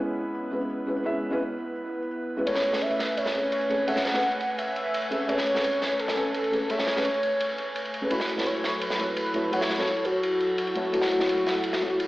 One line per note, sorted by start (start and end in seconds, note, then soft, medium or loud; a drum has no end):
0.00 0.49 G#3 medium
0.00 2.42 B3 medium
0.00 0.50 C#4 medium
0.00 0.50 E4 medium
0.00 2.42 E4 medium
0.00 0.51 B4 medium
0.00 8.07 B4 medium
0.17 tambourine soft
0.35 tambourine soft
0.51 0.85 G#3 medium
0.51 0.85 C#4 medium
0.51 0.86 E4 medium
0.51 0.86 B4 medium
0.61 tambourine medium
0.70 tambourine soft
0.86 1.02 G#3 medium
0.86 1.03 C#4 medium
0.86 1.03 E4 medium
0.86 1.04 B4 medium
0.97 tambourine medium
1.04 1.29 G#3 medium
1.04 1.29 C#4 medium
1.04 1.30 E4 medium
1.04 1.30 E5 medium
1.04 tambourine soft
1.14 tambourine soft
1.31 1.38 G#3 medium
1.31 1.38 C#4 medium
1.31 1.39 E4 medium
1.31 1.39 B4 loud
1.40 tambourine soft
1.58 tambourine soft
1.76 tambourine soft
1.93 tambourine soft
2.02 tambourine medium
2.11 tambourine soft
2.37 2.44 G#3 medium
2.37 2.44 C#4 medium
2.37 2.45 E4 medium
2.37 2.45 B4 medium
2.37 tambourine medium
2.45 2.69 A3 medium
2.45 8.07 A3 medium
2.45 2.71 C#4 medium
2.45 2.71 G#4 medium
2.45 2.71 B4 medium
2.45 2.83 C#5 loud
2.45 8.07 C#5 medium
2.45 8.07 G#5 medium
2.45 ride medium
2.55 snare soft
2.63 ride medium
2.71 3.31 A3 medium
2.71 3.32 C#4 medium
2.71 3.33 G#4 medium
2.71 snare soft
2.75 3.34 B4 medium
2.81 3.19 E5 loud
2.81 ride medium
2.91 ride soft
2.99 snare soft
2.99 ride medium
3.17 3.52 C#5 loud
3.17 ride medium
3.17 tambourine soft
3.26 snare medium
3.34 3.67 A3 medium
3.34 3.68 C#4 medium
3.34 3.68 G#4 medium
3.34 3.68 B4 medium
3.34 ride medium
3.44 tambourine medium
3.52 3.85 C#5 loud
3.52 ride medium
3.61 ride soft
3.69 3.85 A3 medium
3.69 3.85 C#4 medium
3.69 3.86 G#4 medium
3.69 3.86 B4 medium
3.69 ride medium
3.79 tambourine medium
3.86 4.11 A3 medium
3.86 4.12 C#4 medium
3.86 4.12 G#4 medium
3.86 4.13 E5 medium
3.86 4.60 F#5 loud
3.86 ride medium
3.86 tambourine soft
3.96 snare soft
4.05 snare soft
4.05 ride medium
4.13 4.21 A3 medium
4.13 4.21 C#4 medium
4.13 4.21 G#4 medium
4.13 4.22 B4 loud
4.13 snare soft
4.23 ride medium
4.31 ride soft
4.40 ride medium
4.58 5.30 E5 loud
4.58 ride medium
4.58 tambourine soft
4.76 ride medium
4.84 tambourine medium
4.93 ride medium
4.93 tambourine soft
5.02 ride soft
5.10 5.26 A3 medium
5.10 5.26 C#4 medium
5.10 5.27 G#4 medium
5.10 5.27 B4 medium
5.10 ride medium
5.20 tambourine medium
5.28 5.52 A3 medium
5.28 5.53 C#4 medium
5.28 5.53 G#4 medium
5.28 5.54 B4 medium
5.28 6.01 C#5 loud
5.28 ride medium
5.38 snare soft
5.47 ride medium
5.53 6.14 A3 medium
5.53 6.15 C#4 medium
5.53 6.15 G#4 medium
5.53 snare soft
5.57 6.16 B4 medium
5.64 ride medium
5.73 ride soft
5.82 snare soft
5.82 ride medium
5.99 6.71 A4 loud
5.99 ride medium
5.99 tambourine soft
6.08 snare soft
6.16 6.50 A3 medium
6.16 6.50 C#4 medium
6.16 6.51 B4 medium
6.16 6.50 G#5 medium
6.16 ride medium
6.26 tambourine soft
6.34 ride medium
6.34 tambourine soft
6.44 ride soft
6.51 6.67 A3 medium
6.51 6.68 C#4 medium
6.51 6.68 G#4 medium
6.51 6.68 B4 medium
6.51 ride medium
6.61 tambourine medium
6.69 6.94 A3 medium
6.69 6.94 C#4 medium
6.69 6.95 G#4 medium
6.69 7.05 C#5 loud
6.69 6.95 E5 medium
6.69 ride medium
6.79 snare soft
6.87 snare medium
6.87 ride medium
6.95 7.03 A3 medium
6.95 7.03 C#4 medium
6.95 7.04 G#4 medium
6.95 7.04 B4 loud
6.95 snare soft
7.05 7.89 C#5 loud
7.05 ride medium
7.05 tambourine soft
7.14 ride soft
7.23 ride medium
7.40 ride medium
7.40 tambourine soft
7.58 ride medium
7.67 tambourine soft
7.75 ride medium
7.75 tambourine soft
7.85 ride soft
7.94 ride medium
8.01 8.08 A3 medium
8.01 8.09 C#4 medium
8.01 8.09 G#4 medium
8.01 8.10 B4 medium
8.01 tambourine medium
8.10 12.07 F#3 medium
8.10 8.34 A3 medium
8.10 8.35 E4 medium
8.10 12.07 E4 medium
8.10 8.36 F#4 medium
8.10 12.07 A4 medium
8.10 8.48 B4 loud
8.10 8.36 C#5 medium
8.10 ride medium
8.10 tambourine soft
8.20 snare soft
8.29 ride medium
8.35 8.96 A3 medium
8.35 8.97 E4 medium
8.35 8.98 F#4 medium
8.35 snare soft
8.40 8.98 C#5 medium
8.46 8.83 C#5 loud
8.46 ride medium
8.56 ride soft
8.64 snare soft
8.64 ride medium
8.81 9.16 B4 medium
8.81 ride medium
8.81 tambourine soft
8.90 snare medium
8.98 9.32 A3 medium
8.98 9.32 E4 medium
8.98 9.33 F#4 medium
8.98 9.33 C#5 medium
8.98 ride medium
9.08 tambourine medium
9.16 9.54 B4 medium
9.16 ride medium
9.16 tambourine soft
9.26 ride soft
9.33 9.50 A3 medium
9.33 9.50 E4 medium
9.33 9.50 F#4 medium
9.33 9.51 C#5 medium
9.33 ride medium
9.44 tambourine medium
9.51 9.76 A3 medium
9.51 9.76 E4 medium
9.51 9.77 F#4 medium
9.51 10.07 C#5 loud
9.51 9.77 F#5 medium
9.51 ride medium
9.61 snare soft
9.70 snare soft
9.70 ride medium
9.78 9.85 A3 medium
9.78 9.85 E4 medium
9.78 9.86 F#4 medium
9.78 9.86 C#5 loud
9.78 snare soft
9.87 ride medium
9.87 tambourine soft
9.96 ride soft
10.05 12.07 F#4 loud
10.05 ride medium
10.05 tambourine soft
10.23 ride medium
10.23 tambourine soft
10.40 ride medium
10.50 tambourine medium
10.58 ride medium
10.58 tambourine soft
10.67 ride soft
10.75 10.91 A3 medium
10.75 10.91 E4 medium
10.75 10.92 F#4 medium
10.75 10.92 C#5 medium
10.75 ride medium
10.85 tambourine medium
10.92 11.16 A3 medium
10.92 11.18 E4 medium
10.92 11.18 F#4 medium
10.92 11.18 C#5 medium
10.92 ride medium
10.92 tambourine soft
11.02 snare soft
11.11 ride medium
11.18 11.78 A3 medium
11.18 11.79 E4 medium
11.18 11.80 F#4 medium
11.18 snare soft
11.22 11.81 C#5 medium
11.29 ride medium
11.29 tambourine soft
11.38 ride soft
11.46 snare soft
11.46 ride medium
11.63 ride medium
11.63 tambourine soft
11.73 snare soft
11.80 12.07 A3 medium
11.80 12.07 E4 medium
11.80 12.07 F#4 medium
11.80 12.07 C#5 medium
11.80 ride medium
11.91 tambourine medium
11.99 ride medium
11.99 tambourine soft